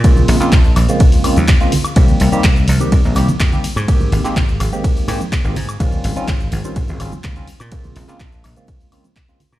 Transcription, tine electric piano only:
X:1
M:4/4
L:1/16
Q:1/4=125
K:Bbdor
V:1 name="Tine electric piano"
[D,A,B,CF]3 [D,A,B,CF] z3 [D,A,B,CF]3 [D,A,B,CF] z2 [D,A,B,CF] z2 | [E,G,B,CG]3 [E,G,B,CG] z3 [E,G,B,CG]3 [E,G,B,CG] z2 [E,G,B,CG] z2 | [E,A,B,CG]3 [E,A,B,CG] z3 [E,A,B,CG]3 [E,A,B,CG] z2 [E,A,B,CG] z2 | [E,G,CDF]3 [E,G,CDF] z3 [E,G,CDF]3 [E,G,CDF] z2 [E,G,CDF] z2 |
[D,A,B,CF]3 [D,A,B,CF] z3 [D,A,B,CF]3 [D,A,B,CF] z2 [D,A,B,CF] z2 |]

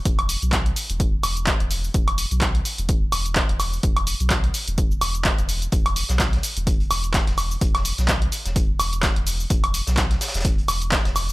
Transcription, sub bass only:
X:1
M:4/4
L:1/16
Q:"Swing 16ths" 1/4=127
K:Clyd
V:1 name="Sub bass" clef=bass
E,,,3 B,,,3 z E,,,3 E,,,3 E,,,3 | E,,,3 B,,,3 z E,,,3 E,,,3 E,,,3 | E,,,3 B,,,3 z E,,,3 E,,,3 E,,,3 | E,,,3 B,,,3 z E,,,3 E,,,3 E,,,3 |
E,,,3 B,,,3 z E,,,3 E,,,3 E,,,3 | E,,,3 B,,,3 z E,,,3 E,,,3 E,,,3 |]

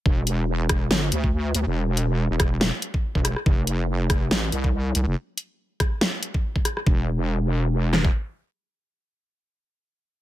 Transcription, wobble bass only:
X:1
M:4/4
L:1/16
Q:"Swing 16ths" 1/4=141
K:Flyd
V:1 name="Wobble bass" clef=bass
E,,,8 G,,,2 D,,4 D,, E,,,- | E,,,4- E,,, E,,,4 z4 E,,,2 z | F,,,8 A,,,2 C,,4 C,, F,,, | z16 |
E,,,12 z4 | z16 |]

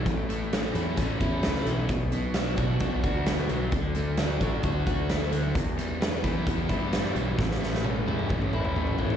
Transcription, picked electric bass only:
X:1
M:4/4
L:1/8
Q:1/4=131
K:Amix
V:1 name="Picked electric bass" clef=bass
A,,,3 E,, A,,, E,, C,, B,,, | B,,,3 B,, B,,, D,,2 B,,, | D,,3 A,,, D,, D,,3 | E,,3 E, E,, G,,2 B,,, |
A,,,3 E,, A,,, A,,,3 |]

